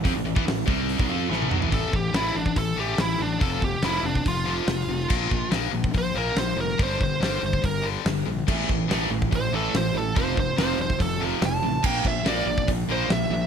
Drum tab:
CC |----------------|----------------|----------------|x---------------|
HH |o---o---o-------|o---o---o---o---|o---o---o---o---|----o---o---o---|
SD |----o-------o---|----o-------o---|----o-------o--o|----o-------o--o|
T1 |-------------o--|----------------|----------------|----------------|
T2 |--------------o-|----------------|----------------|----------------|
FT |---------------o|----------------|----------------|----------------|
BD |o--o--o--o------|o-o----oo-------|o-o----oo-------|o-o----oo-------|

CC |----------------|x---------------|----------------|x---------------|
HH |o---o---o---o---|----o---o---o---|o---o---o---o---|----o---o---o---|
SD |----o-------o---|----o-------o---|----o-------o---|----o-------o---|
T1 |----------------|----------------|----------------|----------------|
T2 |----------------|----------------|----------------|----------------|
FT |----------------|----------------|----------------|----------------|
BD |o-o----oo-------|o-o----oo-------|o-o----oo-------|o-o----oo-------|